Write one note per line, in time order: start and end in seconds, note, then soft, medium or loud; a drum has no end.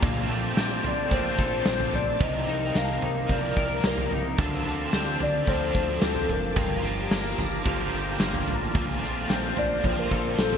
0.00 0.26 A#1 loud
0.00 0.29 A#2 medium
0.00 2.21 A#2 medium
0.00 0.29 D3 loud
0.00 1.11 F3 medium
0.00 0.30 A3 medium
0.00 0.57 A#3 medium
0.00 0.30 C4 medium
0.00 0.30 D4 medium
0.00 2.19 C5 medium
0.00 0.21 F5 medium
0.00 0.37 G5 medium
0.00 2.17 G5 medium
0.00 2.18 A5 medium
0.00 4.35 D6 medium
0.00 kick loud
0.00 floor tom loud
0.00 tambourine medium
0.04 0.29 F4 loud
0.04 0.27 A4 medium
0.28 0.53 A#1 loud
0.28 0.84 D4 medium
0.28 1.16 F4 medium
0.28 1.11 A4 medium
0.28 tambourine medium
0.32 1.07 A3 medium
0.32 1.12 C4 medium
0.57 0.81 A#1 loud
0.57 1.66 C4 medium
0.57 snare loud
0.57 tambourine medium
0.84 1.08 A#1 medium
0.84 1.93 D4 medium
0.84 1.16 D5 loud
0.84 floor tom medium
1.08 1.35 A#1 loud
1.08 2.51 F3 medium
1.08 2.19 A3 medium
1.08 2.44 C5 medium
1.08 kick medium
1.08 floor tom medium
1.08 tambourine medium
1.13 2.21 C4 medium
1.13 2.22 F4 medium
1.13 1.97 C5 medium
1.20 2.23 A4 medium
1.30 2.60 F5 medium
1.39 1.63 A#1 loud
1.39 2.26 A4 medium
1.39 kick loud
1.39 tambourine medium
1.66 1.90 A#1 medium
1.66 2.75 C4 medium
1.66 snare loud
1.66 tambourine medium
1.80 floor tom medium
1.93 2.17 A#1 medium
1.93 2.48 D4 medium
1.93 2.24 D5 medium
1.93 floor tom medium
1.93 tambourine medium
2.20 2.45 C2 loud
2.20 2.47 C3 medium
2.20 4.38 C3 medium
2.20 2.48 F3 medium
2.20 2.48 C4 medium
2.20 2.48 D#4 medium
2.20 4.37 A#4 medium
2.20 2.45 A#4 medium
2.20 2.79 D#5 loud
2.20 8.71 F5 medium
2.20 kick loud
2.20 floor tom loud
2.20 tambourine medium
2.46 2.72 C2 loud
2.46 3.86 D#4 medium
2.46 3.01 D#4 medium
2.46 3.30 D#4 soft
2.46 3.29 A#4 medium
2.46 tambourine medium
2.52 3.31 C4 soft
2.66 4.03 G5 medium
2.75 2.99 C2 loud
2.75 3.83 A#3 medium
2.75 3.31 F5 loud
2.75 snare loud
2.75 tambourine medium
2.84 4.19 A5 medium
3.02 3.26 C2 medium
3.02 4.10 D#4 medium
3.02 floor tom medium
3.26 3.53 C2 medium
3.26 4.39 F3 medium
3.26 5.47 F3 medium
3.26 4.62 F5 medium
3.26 kick medium
3.26 floor tom medium
3.26 tambourine medium
3.31 4.39 C4 medium
3.31 4.40 D#4 medium
3.31 3.88 D5 loud
3.38 4.41 A#4 medium
3.57 3.81 C2 medium
3.57 4.44 A#4 medium
3.57 kick loud
3.57 tambourine medium
3.84 4.08 C2 loud
3.84 4.44 A#3 medium
3.84 4.26 A#4 medium
3.84 snare loud
3.84 tambourine loud
3.98 floor tom medium
4.11 4.35 C2 loud
4.11 4.44 D#4 medium
4.11 floor tom medium
4.11 tambourine medium
4.38 4.63 D2 loud
4.38 4.65 D3 medium
4.38 7.89 D3 medium
4.38 4.66 F3 medium
4.38 4.67 C4 medium
4.38 4.66 D4 medium
4.38 6.54 A4 medium
4.38 4.63 A4 loud
4.38 6.54 C6 medium
4.38 10.58 D6 medium
4.38 kick loud
4.38 floor tom loud
4.38 tambourine medium
4.64 4.90 D2 loud
4.64 5.20 D4 medium
4.64 5.52 D4 medium
4.64 5.47 A4 medium
4.64 tambourine medium
4.70 5.48 C4 medium
4.93 5.17 D2 loud
4.93 6.01 C4 medium
4.93 snare loud
4.93 tambourine medium
5.20 5.45 D2 loud
5.20 6.29 D4 medium
5.20 5.51 D5 loud
5.20 floor tom medium
5.44 5.72 D2 loud
5.44 6.57 F3 medium
5.44 7.65 F3 medium
5.44 kick medium
5.44 floor tom medium
5.44 tambourine medium
5.49 6.58 C4 medium
5.49 6.59 D4 medium
5.49 6.04 C5 loud
5.57 6.61 A4 medium
5.75 5.99 D2 medium
5.75 6.80 A5 medium
5.75 kick medium
5.75 tambourine medium
6.02 6.26 D2 loud
6.02 6.62 C4 medium
6.02 6.32 A4 medium
6.02 snare loud
6.02 tambourine loud
6.16 floor tom medium
6.29 6.54 F1 medium
6.29 6.84 D4 medium
6.29 6.85 A#4 medium
6.29 floor tom medium
6.29 tambourine medium
6.56 6.81 G1 loud
6.56 6.83 G2 medium
6.56 8.75 G2 medium
6.56 6.84 D3 medium
6.56 6.84 F3 medium
6.56 6.84 A#3 medium
6.56 6.81 F4 medium
6.56 8.73 G4 medium
6.56 7.96 G5 medium
6.56 8.73 A#5 medium
6.56 kick loud
6.56 floor tom loud
6.56 tambourine medium
6.83 7.08 G1 loud
6.83 7.71 A#3 soft
6.83 7.39 D4 medium
6.83 7.74 F4 medium
6.83 tambourine medium
6.88 7.67 F3 soft
7.11 7.35 G1 loud
7.11 8.20 A#3 medium
7.11 snare loud
7.11 tambourine medium
7.38 7.63 G1 medium
7.38 8.48 D4 medium
7.38 floor tom medium
7.62 7.90 G1 loud
7.62 8.74 D3 medium
7.62 9.84 F3 medium
7.62 kick medium
7.62 floor tom medium
7.62 tambourine medium
7.67 8.75 F3 medium
7.67 8.76 A#3 medium
7.74 8.77 F4 medium
7.93 8.17 G1 medium
7.93 8.81 G4 medium
7.93 tambourine medium
8.20 8.44 G1 medium
8.20 9.29 A#3 medium
8.20 snare loud
8.20 tambourine medium
8.34 floor tom medium
8.47 8.72 A1 medium
8.47 9.02 D4 medium
8.47 floor tom medium
8.47 tambourine medium
8.74 8.99 A#1 loud
8.74 9.02 A#2 medium
8.74 10.58 A#2 medium
8.74 9.02 D3 medium
8.74 9.03 A3 medium
8.74 9.03 C4 loud
8.74 9.00 F4 loud
8.74 10.58 C5 medium
8.74 10.58 F5 medium
8.74 10.58 A5 medium
8.74 kick loud
8.74 floor tom loud
8.74 tambourine medium
9.01 9.26 A#1 loud
9.01 9.85 C4 medium
9.01 9.57 D4 medium
9.01 9.92 F4 medium
9.01 tambourine medium
9.06 9.86 A3 soft
9.29 9.54 A#1 loud
9.29 10.38 C4 medium
9.29 10.58 G5 medium
9.29 snare loud
9.29 tambourine medium
9.57 9.81 A#1 loud
9.57 10.58 D4 medium
9.57 9.87 D5 loud
9.57 floor tom medium
9.81 10.08 A#1 loud
9.81 10.58 D3 medium
9.81 10.58 F3 medium
9.81 kick medium
9.81 floor tom medium
9.81 tambourine medium
9.85 10.58 C4 medium
9.85 10.00 C5 loud
9.93 10.58 F4 medium
9.99 10.39 A#4 medium
10.11 10.35 A#1 loud
10.11 10.58 A4 medium
10.11 kick medium
10.11 tambourine medium
10.38 10.58 A#1 medium
10.38 10.58 C4 medium
10.38 10.58 A4 medium
10.38 snare loud
10.38 tambourine loud
10.53 floor tom medium